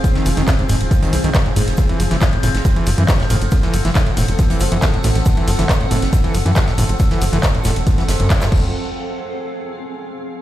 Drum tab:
CC |----------------|----------------|----------------|----------------|
RD |xxxxxxxxxxxxxxxx|xxxxxxxxxxxxxxxx|xxxxxxxxxxxxxxxx|xxxxxxxxxxxxxxxx|
HH |x-oxx-oxxxoxx-ox|x-oxx-oxx-oxx-ox|x-oxx-oxxxoxx-ox|x-oxx-oxx-oxx-ox|
SH |x-x-x-x-x-x-x-x-|x-x-x-x-x-x-x-x-|x-x-x-x-x-x-x-x-|x-x-x-x-x-x-x-x-|
CP |----x-------x---|----x-------x---|----x-------x---|----x-------x---|
SD |-o-oo-------o--o|---oo--o----oo--|-o-oo-------o--o|---oo--o----oo--|
BD |o---o---o---o---|o---o---o---o---|o---o---o---o---|o---o---o---o---|

CC |--------------x-|----------------|
RD |xxxxxxxxxxxxxx--|----------------|
HH |x-oxx-oxx-oxx---|----------------|
SH |x-x-x-x-x-x-xx--|----------------|
CP |----x-------xx--|----------------|
SD |-o-oo-o--oo-oo--|----------------|
BD |o---o---o---o-o-|----------------|